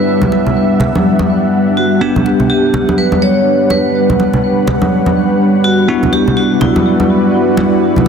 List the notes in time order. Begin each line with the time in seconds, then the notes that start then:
Already playing: G3 B3 D4 E4 G4 B4 E5 F#5
0.22 high conga, low conga
0.32 muted conga
0.47 low conga
0.80 muted conga, low conga
0.95 high conga
1.19 high conga
1.77 F#4
2.01 G3 B3 D4 G4 F#5
2.16 high conga, low conga
2.26 muted conga
2.40 low conga
2.49 G4 B4
2.74 muted conga, low conga
2.89 high conga
2.98 B4
3.12 high conga
3.22 C#5
3.70 B4, muted conga
3.95 C#5
4.10 high conga, low conga
4.20 muted conga
4.33 low conga
4.67 muted conga, low conga
4.82 high conga
5.06 high conga
5.64 F#4
5.88 G3 B3 D4 E4 F#4 B4 D5
6.03 high conga, low conga
6.13 G4, muted conga
6.28 low conga
6.37 F#4
6.61 E4, muted conga, low conga
6.76 high conga
7.00 high conga
7.57 muted conga
7.96 high conga, low conga